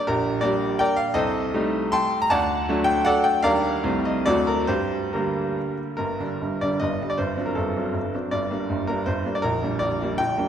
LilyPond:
<<
  \new Staff \with { instrumentName = "Grand piano" } { \time 3/4 \key g \minor \tempo 4 = 158 <d' g' bes'>4 <g' bes' d''>4 <bes' d'' g''>8 f''8 | <a' c'' ees''>2 <g'' a'' c'''>8. bes''16 | <d'' fis'' a''>4. g''8 <a' d'' fis''>8 g''8 | <bes' d'' f''>4. ees''8 <fis' a' d''>8 bes'8 |
<g' c''>4 <d' g' bes'>4. r8 | bes'4. d''8 ees''8. d''16 | c''8. bes'16 a'4. r8 | d''4. bes'8 c''8. d''16 |
bes'4 d''4 g''4 | }
  \new Staff \with { instrumentName = "Grand piano" } { \clef bass \time 3/4 \key g \minor bes,,4 <g bes d'>2 | c,4 <g a ees'>2 | d,4 <fis a d'>2 | <ees, g d'>4 <c, g a c'>4 <d, fis a c'>4 |
g,4 <d g bes>2 | <g,, g,>8 <d g d'>8 <g,, g,>8 <d g d'>8 <g,, g,>8 <d g d'>8 | <g,, g,>8 <fis c' d'>8 <g,, g,>8 <fis c' d'>8 <g,, g,>8 <fis c' d'>8 | <g,, g,>8 <g bes d'>8 <g,, g,>8 <g bes d'>8 <g,, g,>8 <g bes d'>8 |
<bes,,, bes,,>8 <g bes d'>8 <bes,,, bes,,>8 <g bes d'>8 <bes,,, bes,,>8 <g bes d'>8 | }
>>